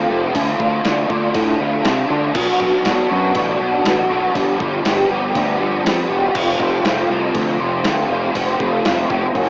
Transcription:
Already playing: F3 A3 C4
0.10 F1 F3 A3 C4 F4
0.34 D2 D3 A3 D4 F4, kick, open hi-hat
0.60 D2 A3 D4 F4, kick
0.84 D2 D3 A3 D4 F4, snare, open hi-hat
1.08 D2 A3 D4 F4, kick
1.34 A2 D3 A3 D4 F4, kick, open hi-hat
1.59 D2 A3 D4 F4
1.82 C3 D3 A3 D4 F4, snare, open hi-hat
2.09 D3 A3 D4 F4
2.34 B1 B2 F#3 B3 D4 F#4, kick, crash
2.59 B1 B3 D4 F#4, kick
2.84 B1 F#3 B3 D4 F#4, snare, open hi-hat
3.09 F#2 B3 D4 F#4
3.33 A1 B2 F#3 B3 D4 F#4, kick, open hi-hat
3.60 B1 B3 D4 F#4
3.85 A1 F#3 B3 D4 F#4, snare, open hi-hat
4.09 B1 B3 D4 F#4
4.34 G1 G2 D3 F3 G3 B3 G4, kick, open hi-hat
4.59 G1 F3 G3 B3 G4, kick
4.84 G1 F3 G3 B3 G4, snare, open hi-hat
5.09 G1 F3 G3 B3 G4
5.35 D2 G2 D3 F3 G3 B3 G4, kick, open hi-hat
5.59 G1 F3 G3 B3 G4
5.85 F2 F3 G3 B3 G4, snare, open hi-hat
6.09 E1 F3 G3 B3 G4
6.34 F1 F2 C3 F3 A3 C4 F4, kick, crash
6.60 F1 F3 A3 C4 F4, kick
6.83 F1 F3 A3 C4 F4, snare, open hi-hat
7.10 C2 F3 A3 C4 F4
7.35 D2 F2 C3 F3 A3 C4 F4, kick, open hi-hat
7.60 F1 F3 A3 C4 F4
7.84 D2 F3 A3 C4 F4, snare, open hi-hat
8.08 F1 F3 A3 C4 F4
8.34 F1 F2 C3 F3 A3 C4 F4, kick, open hi-hat
8.59 F1 F3 A3 C4 F4, kick
8.84 F1 F3 A3 C4 F4, snare, open hi-hat
9.08 F1 F3 A3 C4 F4, kick
9.32 F#1 F#2 C#3 E3 A#3 C#4 F#4, kick, open hi-hat

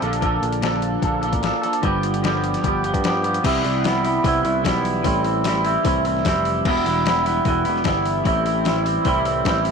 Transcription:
0.00 A#1 A#2 D3 F3 A#3 D4 A4, closed hi-hat
0.13 closed hi-hat
0.20 A#2 D3 F3 A#3 D4 A4, kick, closed hi-hat
0.43 A#1, closed hi-hat
0.53 closed hi-hat
0.61 A#2 D3 F3 A#3 D4 A4, snare, closed hi-hat
0.82 closed hi-hat
1.02 A#1 F3 A#3 D4 A4, kick, closed hi-hat
1.22 F3 A#3 D4 A4, closed hi-hat
1.33 A1, kick, closed hi-hat
1.42 F3 A#3 D4 A4, snare, closed hi-hat
1.62 F3 A#3 D4 A4, closed hi-hat
1.73 closed hi-hat
1.82 G1 G2 D3 F3 G3 B3 G4, kick, closed hi-hat
2.03 closed hi-hat
2.14 closed hi-hat
2.22 G2 D3 F3 G3 B3 G4, snare, closed hi-hat
2.44 closed hi-hat
2.54 snare, closed hi-hat
2.63 G1 F3 G3 B3 G4, kick, closed hi-hat
2.83 F3 G3 B3 G4, closed hi-hat
2.94 G2, kick, closed hi-hat
3.03 F3 G3 B3 G4, snare, closed hi-hat
3.23 F3 G3 B3 G4, closed hi-hat
3.34 closed hi-hat
3.43 C2 C3 E3 G3 B3 E4, kick, open hi-hat, crash
3.63 C2 G3 B3 E4, open hi-hat
3.84 E3 G3 B3 E4, snare, open hi-hat
4.03 G3 B3 E4, open hi-hat
4.23 C2 C3 E3 G3 B3 E4, kick, open hi-hat
4.43 C2 G3 B3 E4, open hi-hat
4.63 B1 E3 G3 B3 E4, kick, snare, open hi-hat
4.85 open hi-hat
5.03 A1 A2 E3 G3 C4 E4, kick, open hi-hat
5.23 G3 C4 E4, open hi-hat
5.44 E3 G3 C4 E4, snare, open hi-hat
5.64 G3 C4 E4, open hi-hat
5.83 C2 A2 E3 G3 C4 E4, kick, open hi-hat
6.05 G3 C4 E4, open hi-hat
6.17 snare
6.25 F1 E3 G3 C4 E4, kick, snare, open hi-hat
6.45 open hi-hat
6.65 E1 E2 B2 E3 G3 B3 E4, kick, crash
6.86 E1 E3 G3 B3 E4, open hi-hat
7.05 E3 G3 B3 E4, snare, open hi-hat
7.25 E3 G3 B3 E4, open hi-hat
7.45 E1 E2 B2 E3 G3 B3 E4, kick, open hi-hat
7.65 E1 E3 G3 B3 E4, open hi-hat
7.76 snare
7.84 G1 E3 G3 B3 E4, kick, snare, open hi-hat
8.06 open hi-hat
8.24 A1 A2 E3 G3 C4 E4, kick, open hi-hat
8.44 G3 C4 E4, open hi-hat
8.64 E3 G3 C4 E4, snare, open hi-hat
8.84 G3 C4 E4, open hi-hat
9.04 C2 A2 E3 G3 C4 E4, kick, open hi-hat
9.24 G3 C4 E4, open hi-hat
9.45 A1 E3 G3 C4 E4, kick, snare, open hi-hat
9.65 open hi-hat

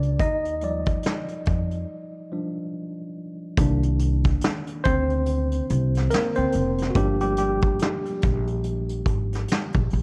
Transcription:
Already playing: C#2 A#3 D4 A#4 D5
0.02 closed hi-hat
0.19 D#2 D#4 D#5, kick, closed hi-hat
0.45 closed hi-hat
0.61 F3 G3 D5, closed hi-hat
0.86 kick, closed hi-hat
1.03 snare, closed hi-hat
1.28 closed hi-hat
1.46 F2, kick, closed hi-hat
1.71 closed hi-hat
2.32 F3 G3 D4
3.57 C2 D#3 A#3 D4, kick, closed hi-hat
3.83 closed hi-hat
3.99 closed hi-hat
4.24 kick, closed hi-hat
4.41 snare, closed hi-hat
4.67 closed hi-hat
4.84 D2 C4 C5, kick, closed hi-hat
5.10 closed hi-hat
5.26 closed hi-hat
5.52 closed hi-hat
5.70 C2, closed hi-hat
5.95 snare, closed hi-hat
6.10 A#3 A#4, snare, closed hi-hat
6.35 D2 C4 C5, closed hi-hat
6.52 F1, closed hi-hat
6.78 snare, closed hi-hat
6.90 F#4
6.95 G1 F3 G3 A#3 D4 G4, kick, closed hi-hat
7.20 G3 G4, closed hi-hat
7.37 G3 G4, closed hi-hat
7.61 kick, closed hi-hat
7.79 snare, closed hi-hat
8.05 closed hi-hat
8.22 A#1, kick, closed hi-hat
8.48 closed hi-hat
8.64 closed hi-hat
8.89 closed hi-hat
9.06 G#1, kick, closed hi-hat
9.33 snare, closed hi-hat
9.48 snare, closed hi-hat
9.73 A#1, kick, closed hi-hat
9.90 A#1, open hi-hat

